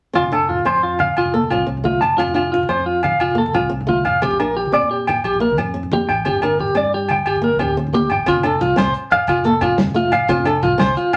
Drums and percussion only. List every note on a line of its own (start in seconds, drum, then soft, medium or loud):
0.15 high conga medium
0.15 low agogo medium
0.26 low conga medium
0.32 low agogo medium
0.42 low conga soft
0.50 low conga medium
0.59 high conga medium
0.66 low agogo medium
0.75 low conga medium
0.92 low conga soft
0.99 high conga medium
0.99 low conga medium
0.99 low agogo medium
1.17 low agogo medium
1.26 low conga medium
1.42 high conga medium
1.42 low conga soft
1.51 low conga medium
1.51 low agogo medium
1.77 low conga medium
1.85 high conga medium
2.02 low conga medium
2.02 low agogo medium
2.11 low conga soft
2.19 high conga medium
2.19 low agogo medium
2.28 low conga medium
2.36 low agogo medium
2.45 low conga soft
2.54 low conga medium
2.63 high conga medium
2.69 low agogo medium
2.80 low conga medium
2.97 low conga soft
3.03 high conga medium
3.03 low conga medium
3.03 low agogo medium
3.20 low agogo medium
3.30 low conga medium
3.46 high conga medium
3.46 low conga soft
3.54 low conga medium
3.54 low agogo medium
3.81 low conga medium
3.89 high conga medium
4.05 low conga medium
4.05 low agogo medium
4.14 low conga soft
4.22 high conga medium
4.22 low agogo medium
4.31 low conga medium
4.40 low agogo medium
4.66 high conga medium
4.74 low agogo medium
4.82 low conga medium
4.99 low conga soft
5.07 high conga medium
5.07 low conga medium
5.07 low agogo medium
5.24 low agogo medium
5.33 low conga medium
5.50 high conga medium
5.50 low conga soft
5.57 low conga medium
5.57 low agogo medium
5.83 low conga medium
5.92 high conga medium
6.09 low conga medium
6.09 low agogo medium
6.19 low conga soft
6.25 high conga medium
6.25 low agogo medium
6.35 low conga medium
6.42 low conga soft
6.42 low agogo medium
6.59 low conga medium
6.68 high conga medium
6.68 low conga soft
6.75 low agogo medium
6.84 low conga medium
7.09 high conga medium
7.09 low agogo medium
7.19 low conga soft
7.26 low agogo medium
7.36 low conga medium
7.44 low conga soft
7.53 high conga medium
7.53 low conga soft
7.59 low conga medium
7.59 low agogo medium
7.87 low conga medium
7.95 high conga medium
7.95 low conga soft
8.10 low conga medium
8.10 low agogo medium
8.20 low conga soft
8.26 kick medium
8.26 closed hi-hat medium
8.26 high conga medium
8.26 low agogo medium
8.36 low conga medium
8.43 closed hi-hat soft
8.43 low agogo medium
8.61 closed hi-hat soft
8.61 low conga medium
8.77 snare medium
8.77 closed hi-hat medium
8.77 high conga medium
8.77 low agogo medium
8.86 low conga medium
8.94 closed hi-hat soft
9.11 closed hi-hat soft
9.11 low conga medium
9.11 low agogo medium
9.27 kick medium
9.27 closed hi-hat medium
9.27 high conga medium
9.27 low agogo medium
9.38 low conga medium
9.44 closed hi-hat soft
9.61 kick medium
9.61 closed hi-hat medium
9.61 low conga loud
9.61 low agogo medium
9.78 snare medium
9.78 closed hi-hat medium
9.78 high conga loud
9.78 low conga soft
9.87 low conga medium
9.95 closed hi-hat medium
9.95 low conga soft
10.05 low conga soft
10.12 closed hi-hat medium
10.12 low conga medium
10.12 low agogo medium
10.28 kick medium
10.28 closed hi-hat medium
10.28 high conga medium
10.28 low agogo medium
10.39 low conga medium
10.45 closed hi-hat soft
10.45 low agogo medium
10.62 kick medium
10.62 closed hi-hat soft
10.62 low conga loud
10.79 snare medium
10.79 closed hi-hat medium
10.79 high conga medium
10.79 low agogo medium
10.88 low conga medium
10.96 closed hi-hat soft
11.13 closed hi-hat soft
11.13 low conga medium
11.13 low agogo medium